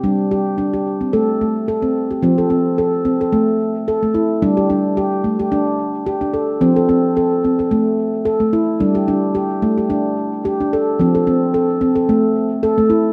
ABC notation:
X:1
M:4/4
L:1/16
Q:"Swing 16ths" 1/4=110
K:Flyd
V:1 name="Handpan"
D2 G2 D G2 C A2 A,2 A C2 G | C A C2 A2 C A A,2 z2 A A, E2 | D G D2 G2 A, G D2 z2 G D A2 | C A C2 A2 C A A,2 z2 A A, E2 |
D G D2 G2 A, G D2 z2 G D A2 | C A C2 A2 C A A,2 z2 A A, E2 |]
V:2 name="Handpan" clef=bass
G,8 A,8 | F,16 | G,16 | F,16 |
G,16 | F,16 |]